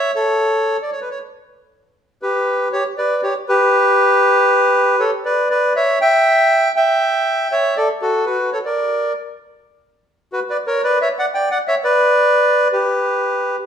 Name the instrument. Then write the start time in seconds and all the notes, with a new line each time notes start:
bandoneon
Already playing: C#5 E5
0.14 A4 C#5
0.82 D5
0.92 C#5
1.01 B4
1.11 C#5
2.22 G4 B4
2.73 G4 C#5
2.98 B4 D5
3.23 G4 C#5
3.48 G4 B4
5.00 A4 C#5
5.25 B4 D5
5.50 B4 D5
5.76 C#5 E5
6.01 E5 G5
6.76 E5 G5
7.52 C#5 E5
7.77 A4 D5
8.02 F#4 A4
8.26 F#4 B4
8.52 A4 C#5
8.65 A#4 D5
10.32 F#4 B4
10.50 B4 D5
10.67 A#4 C#5
10.84 B4 D5
11.01 C#5 E5
11.19 D5 F#5
11.34 D5 G5
11.51 D5 F#5
11.68 C#5 E5
11.84 B4 D5
12.72 G4 B4